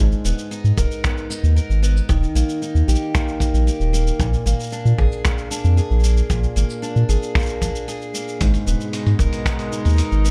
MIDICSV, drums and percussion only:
0, 0, Header, 1, 2, 480
1, 0, Start_track
1, 0, Tempo, 526316
1, 1906, Time_signature, 4, 2, 24, 8
1, 9401, End_track
2, 0, Start_track
2, 0, Title_t, "Drums"
2, 110, Note_on_c, 9, 82, 18
2, 201, Note_off_c, 9, 82, 0
2, 229, Note_on_c, 9, 82, 70
2, 321, Note_off_c, 9, 82, 0
2, 352, Note_on_c, 9, 82, 33
2, 443, Note_off_c, 9, 82, 0
2, 470, Note_on_c, 9, 82, 40
2, 561, Note_off_c, 9, 82, 0
2, 592, Note_on_c, 9, 82, 19
2, 683, Note_off_c, 9, 82, 0
2, 707, Note_on_c, 9, 36, 96
2, 711, Note_on_c, 9, 82, 68
2, 798, Note_off_c, 9, 36, 0
2, 802, Note_off_c, 9, 82, 0
2, 832, Note_on_c, 9, 82, 28
2, 923, Note_off_c, 9, 82, 0
2, 949, Note_on_c, 9, 26, 77
2, 953, Note_on_c, 9, 36, 99
2, 953, Note_on_c, 9, 82, 41
2, 1040, Note_off_c, 9, 26, 0
2, 1044, Note_off_c, 9, 36, 0
2, 1044, Note_off_c, 9, 82, 0
2, 1072, Note_on_c, 9, 82, 22
2, 1163, Note_off_c, 9, 82, 0
2, 1193, Note_on_c, 9, 82, 73
2, 1284, Note_off_c, 9, 82, 0
2, 1314, Note_on_c, 9, 82, 29
2, 1405, Note_off_c, 9, 82, 0
2, 1435, Note_on_c, 9, 82, 42
2, 1526, Note_off_c, 9, 82, 0
2, 1554, Note_on_c, 9, 82, 20
2, 1646, Note_off_c, 9, 82, 0
2, 1674, Note_on_c, 9, 82, 67
2, 1765, Note_off_c, 9, 82, 0
2, 1795, Note_on_c, 9, 82, 31
2, 1886, Note_off_c, 9, 82, 0
2, 1908, Note_on_c, 9, 36, 112
2, 1913, Note_on_c, 9, 82, 40
2, 1999, Note_off_c, 9, 36, 0
2, 2004, Note_off_c, 9, 82, 0
2, 2035, Note_on_c, 9, 82, 20
2, 2126, Note_off_c, 9, 82, 0
2, 2153, Note_on_c, 9, 82, 74
2, 2244, Note_off_c, 9, 82, 0
2, 2273, Note_on_c, 9, 82, 31
2, 2364, Note_off_c, 9, 82, 0
2, 2393, Note_on_c, 9, 82, 45
2, 2484, Note_off_c, 9, 82, 0
2, 2513, Note_on_c, 9, 82, 20
2, 2604, Note_off_c, 9, 82, 0
2, 2633, Note_on_c, 9, 82, 70
2, 2693, Note_off_c, 9, 82, 0
2, 2693, Note_on_c, 9, 82, 29
2, 2784, Note_off_c, 9, 82, 0
2, 2870, Note_on_c, 9, 26, 79
2, 2871, Note_on_c, 9, 36, 126
2, 2874, Note_on_c, 9, 82, 45
2, 2961, Note_off_c, 9, 26, 0
2, 2962, Note_off_c, 9, 36, 0
2, 2965, Note_off_c, 9, 82, 0
2, 2991, Note_on_c, 9, 82, 23
2, 3082, Note_off_c, 9, 82, 0
2, 3103, Note_on_c, 9, 36, 91
2, 3112, Note_on_c, 9, 82, 74
2, 3194, Note_off_c, 9, 36, 0
2, 3203, Note_off_c, 9, 82, 0
2, 3233, Note_on_c, 9, 82, 31
2, 3324, Note_off_c, 9, 82, 0
2, 3353, Note_on_c, 9, 82, 43
2, 3444, Note_off_c, 9, 82, 0
2, 3473, Note_on_c, 9, 82, 21
2, 3565, Note_off_c, 9, 82, 0
2, 3594, Note_on_c, 9, 82, 76
2, 3685, Note_off_c, 9, 82, 0
2, 3713, Note_on_c, 9, 82, 29
2, 3805, Note_off_c, 9, 82, 0
2, 3827, Note_on_c, 9, 36, 111
2, 3832, Note_on_c, 9, 82, 42
2, 3918, Note_off_c, 9, 36, 0
2, 3924, Note_off_c, 9, 82, 0
2, 3953, Note_on_c, 9, 82, 19
2, 4044, Note_off_c, 9, 82, 0
2, 4073, Note_on_c, 9, 82, 80
2, 4164, Note_off_c, 9, 82, 0
2, 4193, Note_on_c, 9, 82, 33
2, 4223, Note_off_c, 9, 82, 0
2, 4223, Note_on_c, 9, 82, 26
2, 4251, Note_off_c, 9, 82, 0
2, 4251, Note_on_c, 9, 82, 21
2, 4282, Note_off_c, 9, 82, 0
2, 4282, Note_on_c, 9, 82, 18
2, 4310, Note_off_c, 9, 82, 0
2, 4310, Note_on_c, 9, 82, 39
2, 4402, Note_off_c, 9, 82, 0
2, 4429, Note_on_c, 9, 82, 22
2, 4521, Note_off_c, 9, 82, 0
2, 4546, Note_on_c, 9, 36, 93
2, 4637, Note_off_c, 9, 36, 0
2, 4669, Note_on_c, 9, 82, 30
2, 4760, Note_off_c, 9, 82, 0
2, 4785, Note_on_c, 9, 26, 77
2, 4789, Note_on_c, 9, 36, 121
2, 4789, Note_on_c, 9, 82, 43
2, 4876, Note_off_c, 9, 26, 0
2, 4880, Note_off_c, 9, 36, 0
2, 4880, Note_off_c, 9, 82, 0
2, 4908, Note_on_c, 9, 82, 22
2, 4999, Note_off_c, 9, 82, 0
2, 5029, Note_on_c, 9, 82, 82
2, 5120, Note_off_c, 9, 82, 0
2, 5150, Note_on_c, 9, 82, 31
2, 5241, Note_off_c, 9, 82, 0
2, 5269, Note_on_c, 9, 82, 44
2, 5360, Note_off_c, 9, 82, 0
2, 5391, Note_on_c, 9, 82, 10
2, 5469, Note_off_c, 9, 82, 0
2, 5469, Note_on_c, 9, 82, 13
2, 5508, Note_off_c, 9, 82, 0
2, 5508, Note_on_c, 9, 82, 75
2, 5599, Note_off_c, 9, 82, 0
2, 5628, Note_on_c, 9, 82, 31
2, 5720, Note_off_c, 9, 82, 0
2, 5745, Note_on_c, 9, 36, 96
2, 5749, Note_on_c, 9, 82, 40
2, 5836, Note_off_c, 9, 36, 0
2, 5840, Note_off_c, 9, 82, 0
2, 5870, Note_on_c, 9, 82, 20
2, 5961, Note_off_c, 9, 82, 0
2, 5990, Note_on_c, 9, 82, 76
2, 6081, Note_off_c, 9, 82, 0
2, 6109, Note_on_c, 9, 82, 32
2, 6200, Note_off_c, 9, 82, 0
2, 6230, Note_on_c, 9, 82, 44
2, 6321, Note_off_c, 9, 82, 0
2, 6350, Note_on_c, 9, 82, 19
2, 6441, Note_off_c, 9, 82, 0
2, 6470, Note_on_c, 9, 82, 66
2, 6561, Note_off_c, 9, 82, 0
2, 6590, Note_on_c, 9, 82, 31
2, 6681, Note_off_c, 9, 82, 0
2, 6705, Note_on_c, 9, 26, 68
2, 6705, Note_on_c, 9, 36, 115
2, 6709, Note_on_c, 9, 82, 20
2, 6740, Note_off_c, 9, 82, 0
2, 6740, Note_on_c, 9, 82, 24
2, 6769, Note_off_c, 9, 82, 0
2, 6769, Note_on_c, 9, 82, 31
2, 6796, Note_off_c, 9, 26, 0
2, 6796, Note_off_c, 9, 36, 0
2, 6800, Note_off_c, 9, 82, 0
2, 6800, Note_on_c, 9, 82, 37
2, 6830, Note_off_c, 9, 82, 0
2, 6830, Note_on_c, 9, 82, 22
2, 6922, Note_off_c, 9, 82, 0
2, 6948, Note_on_c, 9, 36, 96
2, 6950, Note_on_c, 9, 82, 76
2, 7039, Note_off_c, 9, 36, 0
2, 7041, Note_off_c, 9, 82, 0
2, 7072, Note_on_c, 9, 82, 30
2, 7163, Note_off_c, 9, 82, 0
2, 7191, Note_on_c, 9, 82, 41
2, 7282, Note_off_c, 9, 82, 0
2, 7312, Note_on_c, 9, 82, 22
2, 7403, Note_off_c, 9, 82, 0
2, 7431, Note_on_c, 9, 82, 77
2, 7522, Note_off_c, 9, 82, 0
2, 7552, Note_on_c, 9, 82, 30
2, 7643, Note_off_c, 9, 82, 0
2, 7668, Note_on_c, 9, 46, 59
2, 7670, Note_on_c, 9, 36, 97
2, 7672, Note_on_c, 9, 82, 41
2, 7759, Note_off_c, 9, 46, 0
2, 7762, Note_off_c, 9, 36, 0
2, 7763, Note_off_c, 9, 82, 0
2, 7787, Note_on_c, 9, 46, 25
2, 7791, Note_on_c, 9, 82, 20
2, 7878, Note_off_c, 9, 46, 0
2, 7882, Note_off_c, 9, 82, 0
2, 7910, Note_on_c, 9, 82, 74
2, 8001, Note_off_c, 9, 82, 0
2, 8031, Note_on_c, 9, 82, 31
2, 8122, Note_off_c, 9, 82, 0
2, 8147, Note_on_c, 9, 46, 54
2, 8151, Note_on_c, 9, 82, 39
2, 8238, Note_off_c, 9, 46, 0
2, 8242, Note_off_c, 9, 82, 0
2, 8267, Note_on_c, 9, 46, 27
2, 8359, Note_off_c, 9, 46, 0
2, 8382, Note_on_c, 9, 36, 107
2, 8391, Note_on_c, 9, 82, 64
2, 8473, Note_off_c, 9, 36, 0
2, 8482, Note_off_c, 9, 82, 0
2, 8506, Note_on_c, 9, 46, 35
2, 8510, Note_on_c, 9, 82, 30
2, 8597, Note_off_c, 9, 46, 0
2, 8601, Note_off_c, 9, 82, 0
2, 8624, Note_on_c, 9, 36, 95
2, 8626, Note_on_c, 9, 26, 74
2, 8626, Note_on_c, 9, 46, 63
2, 8630, Note_on_c, 9, 82, 44
2, 8715, Note_off_c, 9, 36, 0
2, 8718, Note_off_c, 9, 26, 0
2, 8718, Note_off_c, 9, 46, 0
2, 8722, Note_off_c, 9, 82, 0
2, 8746, Note_on_c, 9, 46, 40
2, 8750, Note_on_c, 9, 82, 22
2, 8837, Note_off_c, 9, 46, 0
2, 8841, Note_off_c, 9, 82, 0
2, 8869, Note_on_c, 9, 82, 72
2, 8960, Note_off_c, 9, 82, 0
2, 8985, Note_on_c, 9, 46, 28
2, 8989, Note_on_c, 9, 82, 28
2, 9021, Note_off_c, 9, 82, 0
2, 9021, Note_on_c, 9, 82, 23
2, 9050, Note_off_c, 9, 82, 0
2, 9050, Note_on_c, 9, 82, 18
2, 9076, Note_off_c, 9, 46, 0
2, 9081, Note_off_c, 9, 82, 0
2, 9081, Note_on_c, 9, 82, 16
2, 9105, Note_on_c, 9, 46, 62
2, 9109, Note_off_c, 9, 82, 0
2, 9109, Note_on_c, 9, 82, 44
2, 9196, Note_off_c, 9, 46, 0
2, 9200, Note_off_c, 9, 82, 0
2, 9229, Note_on_c, 9, 82, 21
2, 9321, Note_off_c, 9, 82, 0
2, 9350, Note_on_c, 9, 82, 72
2, 9401, Note_off_c, 9, 82, 0
2, 9401, End_track
0, 0, End_of_file